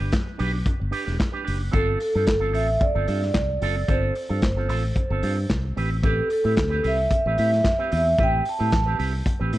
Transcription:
0.00 fingered electric bass G1, clean electric guitar D4 G4 B4
0.12 kick, snare, clap, closed hi-hat
0.26 muted clean electric guitar stroke
0.38 fingered electric bass B1, clean electric guitar D4 G4 B4, open hi-hat
0.53 muted clean electric guitar stroke
0.65 muted clean electric guitar stroke, kick, closed hi-hat
0.80 fingered electric bass G1, muted clean electric guitar stroke
0.91 clean electric guitar D4 G4 B4, open hi-hat
1.05 fingered electric bass E1, clean electric guitar D4 G4 B4, snare
1.18 muted clean electric guitar stroke, kick, snare, clap, closed hi-hat
1.32 clean electric guitar D4 G4 B4
1.44 fingered electric bass F#1, clean electric guitar D4 G4 B4, open hi-hat
1.59 muted clean electric guitar stroke
1.72 fingered electric bass G1, clean electric guitar C4 F4 A4, kick, closed hi-hat
1.76 vibraphone A4
2.00 vibraphone A4, muted clean electric guitar stroke, open hi-hat
2.15 fingered electric bass G2, clean electric guitar C4 F4 A4
2.26 fingered electric bass G1, muted clean electric guitar stroke, kick, snare, clap, closed hi-hat
2.40 clean electric guitar C4 F4 A4
2.53 fingered electric bass A1, clean electric guitar C4 F4 A4, vibraphone E5, open hi-hat
2.68 muted clean electric guitar stroke
2.80 vibraphone D5, muted clean electric guitar stroke, kick, closed hi-hat
2.94 fingered electric bass G1, clean electric guitar C4 F4 A4
3.08 fingered electric bass G2, clean electric guitar C4 F4 A4, open hi-hat
3.22 muted clean electric guitar stroke, snare
3.34 fingered electric bass C2, kick, snare, clap, closed hi-hat
3.49 muted clean electric guitar stroke
3.62 fingered electric bass F#1, clean electric guitar C4 F4 A4, open hi-hat
3.77 muted clean electric guitar stroke
3.88 fingered electric bass G1, clean electric guitar C4 F4 A4, vibraphone C5, kick, closed hi-hat
4.15 muted clean electric guitar stroke, open hi-hat
4.29 fingered electric bass G2, clean electric guitar C4 F4 A4
4.42 fingered electric bass G1, kick, snare, clap, closed hi-hat
4.57 clean electric guitar C4 F4 A4
4.69 fingered electric bass A1, clean electric guitar C4 F4 A4, open hi-hat
4.84 muted clean electric guitar stroke
4.96 muted clean electric guitar stroke, kick, closed hi-hat
5.10 fingered electric bass G1, clean electric guitar C4 F4 A4
5.23 fingered electric bass G2, clean electric guitar C4 F4 A4, open hi-hat
5.37 muted clean electric guitar stroke
5.50 fingered electric bass C2, kick, snare, clap, closed hi-hat
5.64 muted clean electric guitar stroke
5.76 fingered electric bass A1, clean electric guitar C4 G4 B4, open hi-hat
5.91 muted clean electric guitar stroke
6.03 clean electric guitar C4 G4 B4, vibraphone A4, kick, closed hi-hat
6.30 vibraphone A4, muted clean electric guitar stroke, open hi-hat
6.44 fingered electric bass A2, clean electric guitar C4 G4 B4
6.56 fingered electric bass D2, muted clean electric guitar stroke, kick, snare, clap, closed hi-hat
6.70 clean electric guitar C4 G4 B4
6.83 fingered electric bass C2, clean electric guitar C4 G4 B4, vibraphone E5, open hi-hat
6.99 muted clean electric guitar stroke
7.11 vibraphone E5, muted clean electric guitar stroke, kick, closed hi-hat
7.26 fingered electric bass A1, clean electric guitar C4 G4 B4
7.38 fingered electric bass A2, clean electric guitar C4 G4 B4, open hi-hat
7.52 muted clean electric guitar stroke, snare
7.63 muted clean electric guitar stroke, kick, snare, clap, closed hi-hat
7.79 clean electric guitar C4 G4 B4
7.92 fingered electric bass E2, clean electric guitar C4 G4 B4, open hi-hat
7.96 vibraphone E5
8.05 muted clean electric guitar stroke
8.18 fingered electric bass A1, clean electric guitar C4 G4 B4, kick, closed hi-hat
8.23 vibraphone G5
8.45 vibraphone A5, muted clean electric guitar stroke, open hi-hat
8.59 fingered electric bass A2, clean electric guitar C4 G4 B4
8.72 fingered electric bass A1, muted clean electric guitar stroke, kick, snare, clap, closed hi-hat
8.86 clean electric guitar C4 G4 B4
8.99 fingered electric bass C2, clean electric guitar C4 G4 B4, open hi-hat
9.13 muted clean electric guitar stroke
9.26 muted clean electric guitar stroke, kick, closed hi-hat
9.39 fingered electric bass A1, clean electric guitar C4 G4 B4
9.53 fingered electric bass A2, clean electric guitar C4 G4 B4, open hi-hat

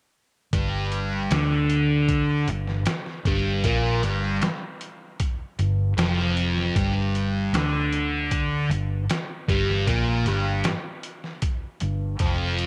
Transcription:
0.53 fingered electric bass G1, distorted electric guitar G2 G3, kick, closed hi-hat
0.92 closed hi-hat
1.31 fingered electric bass D2, distorted electric guitar D3 D4, snare, closed hi-hat
1.70 closed hi-hat
2.09 kick, closed hi-hat
2.48 fingered electric bass G1, distorted electric guitar G2, closed hi-hat
2.68 snare
2.86 snare, closed hi-hat
3.06 snare
3.25 fingered electric bass G1, distorted electric guitar G2 G3, kick, closed hi-hat
3.64 fingered electric bass A#1, distorted electric guitar A#2 A#3, kick, closed hi-hat
4.03 fingered electric bass G1, distorted electric guitar G2 G3, closed hi-hat
4.42 snare, closed hi-hat
4.81 closed hi-hat
5.20 kick, closed hi-hat
5.59 fingered electric bass G1, distorted electric guitar G2, closed hi-hat
5.97 fingered electric bass F1, distorted electric guitar F2 F3, snare, closed hi-hat
6.19 snare
6.37 closed hi-hat
6.58 snare
6.75 fingered electric bass G1, distorted electric guitar G2 G3, kick, closed hi-hat
7.15 closed hi-hat
7.53 fingered electric bass D2, distorted electric guitar D3 D4, snare, closed hi-hat
7.93 closed hi-hat
8.31 kick, closed hi-hat
8.69 fingered electric bass G1, distorted electric guitar G2, closed hi-hat
9.10 snare, closed hi-hat
9.48 fingered electric bass G1, distorted electric guitar G2 G3, kick, closed hi-hat
9.70 snare
9.87 fingered electric bass A#1, distorted electric guitar A#2 A#3, kick, closed hi-hat
10.26 fingered electric bass G1, distorted electric guitar G2 G3, closed hi-hat
10.64 snare, closed hi-hat
11.03 closed hi-hat
11.24 snare
11.42 kick, closed hi-hat
11.80 fingered electric bass G1, distorted electric guitar G2, closed hi-hat
12.19 fingered electric bass F1, distorted electric guitar F2 F3, kick, closed hi-hat
12.58 closed hi-hat

